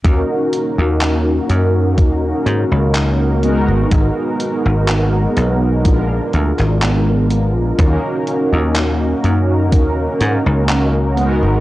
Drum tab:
HH |x-x-x-x-x-x-x-x-|x-x-x-x-x-xxx-x-|x-x-x-x-x-x-x-x-|
CP |----x-------x---|----x------xx---|----x-------x---|
BD |o-------o-------|o-------o-------|o-------o-------|